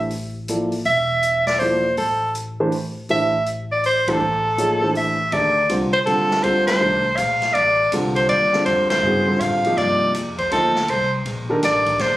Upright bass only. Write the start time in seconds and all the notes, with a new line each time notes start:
Already playing: A1
0.85 E1
1.97 A1
3.09 A1
4.20 A1
5.32 D2
5.70 C2
6.07 D#2
6.31 muted upright bass stroke
6.44 D2
6.81 C2
7.18 A#1
7.55 A1
7.92 C2
8.29 D#2
8.66 F2
8.79 D2
8.91 C2
9.03 G2
9.40 A2
9.77 G2
10.15 F2
10.52 D2
10.89 C2
11.25 A#1
11.63 A1
11.99 G1